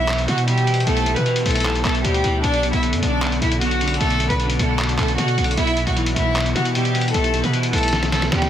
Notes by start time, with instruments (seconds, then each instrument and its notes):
Already playing: 808-style bass B1, ambient pad B2 G4 C5 E5, clean electric guitar E3, violin section E4 E5
0.08 clean electric guitar B2, clap, closed hi-hat
0.18 closed hi-hat
0.28 808-style bass B2, clean electric guitar B2, violin section F#4 F#5, closed hi-hat
0.38 closed hi-hat
0.47 clean electric guitar B2, violin section G3 G4, closed hi-hat
0.58 closed hi-hat
0.67 clean electric guitar E3, closed hi-hat
0.74 closed hi-hat
0.80 closed hi-hat
0.86 808-style bass B1, clean electric guitar B2, violin section A3 A4, closed hi-hat
0.97 closed hi-hat
1.06 clean electric guitar B2, closed hi-hat
1.16 808-style bass B2, violin section B3 B4, closed hi-hat
1.26 clean electric guitar E3, closed hi-hat
1.36 closed hi-hat
1.46 808-style bass B1, clean electric guitar B2, violin section A3 A4, closed hi-hat, open hi-hat
1.51 closed hi-hat
1.55 closed hi-hat
1.60 closed hi-hat
1.65 clean electric guitar B2, clap, closed hi-hat
1.75 closed hi-hat
1.85 808-style bass B1, clean electric guitar B2, violin section A3 A4, clap, closed hi-hat
1.95 closed hi-hat
2.04 808-style bass D2, clean electric guitar B2, violin section G3 G4, closed hi-hat
2.14 closed hi-hat
2.24 808-style bass D2, clean electric guitar E3, closed hi-hat
2.44 808-style bass B1, clean electric guitar B2, violin section D4 D5, ambient pad F#4 A4 D5, closed hi-hat
2.54 closed hi-hat
2.63 clean electric guitar B2, closed hi-hat
2.73 808-style bass B1, violin section E4 E5, closed hi-hat
2.83 clean electric guitar D3, closed hi-hat
2.93 808-style bass F#2, closed hi-hat
3.02 808-style bass B1, clean electric guitar B2, violin section D4 D5, closed hi-hat
3.22 clean electric guitar B2, clap, closed hi-hat
3.32 closed hi-hat
3.42 808-style bass B1, clean electric guitar B2, violin section E4 E5, closed hi-hat
3.52 closed hi-hat
3.61 clean electric guitar B2, violin section F#4 F#5, closed hi-hat
3.71 closed hi-hat
3.81 clean electric guitar D3, closed hi-hat
3.88 closed hi-hat
3.94 closed hi-hat
4.00 808-style bass B1, clean electric guitar B2, violin section A3 A4, closed hi-hat
4.10 closed hi-hat
4.20 clean electric guitar B2, closed hi-hat
4.30 808-style bass B1, violin section B3 B4, closed hi-hat
4.40 clean electric guitar D3, closed hi-hat
4.50 closed hi-hat
4.59 808-style bass B1, clean electric guitar B2, violin section A3 A4, closed hi-hat
4.79 clean electric guitar B2, clap, closed hi-hat
4.89 closed hi-hat
4.99 808-style bass B1, clean electric guitar B2, violin section A3 A4, clap, closed hi-hat
5.08 closed hi-hat
5.18 808-style bass B2, clean electric guitar B2, violin section F#4 F#5, closed hi-hat
5.28 closed hi-hat
5.38 808-style bass B1, clean electric guitar D3, closed hi-hat
5.44 closed hi-hat
5.51 closed hi-hat
5.57 808-style bass B1, clean electric guitar B2, ambient pad B2 G4 C5 E5, violin section E4 E5, closed hi-hat
5.67 closed hi-hat
5.77 clean electric guitar B2, closed hi-hat
5.87 808-style bass B1, violin section F#4 F#5, closed hi-hat
5.96 clean electric guitar E3, closed hi-hat
6.06 closed hi-hat
6.16 808-style bass B1, clean electric guitar B2, violin section E4 E5, closed hi-hat
6.36 clean electric guitar B2, clap, closed hi-hat
6.46 closed hi-hat
6.55 808-style bass B2, clean electric guitar B2, violin section F#4 F#5, closed hi-hat
6.65 closed hi-hat
6.75 clean electric guitar B2, violin section G3 G4, closed hi-hat
6.85 closed hi-hat
6.94 clean electric guitar E3, closed hi-hat
7.01 closed hi-hat
7.08 closed hi-hat
7.14 808-style bass B1, clean electric guitar B2, violin section A3 A4, closed hi-hat
7.24 closed hi-hat
7.34 clean electric guitar B2, closed hi-hat
7.44 808-style bass B2, violin section B3 B4, closed hi-hat
7.53 clean electric guitar E3, closed hi-hat
7.63 closed hi-hat
7.73 808-style bass B1, clean electric guitar B2, violin section A3 A4, closed hi-hat, open hi-hat
7.78 closed hi-hat
7.83 closed hi-hat
7.88 closed hi-hat
7.93 clean electric guitar B2, snare, closed hi-hat
8.03 snare, closed hi-hat
8.12 clean electric guitar B2, violin section A3 A4, snare, closed hi-hat
8.22 snare, closed hi-hat
8.32 808-style bass D2, clean electric guitar B2, violin section G3 G4, snare, closed hi-hat
8.42 snare, closed hi-hat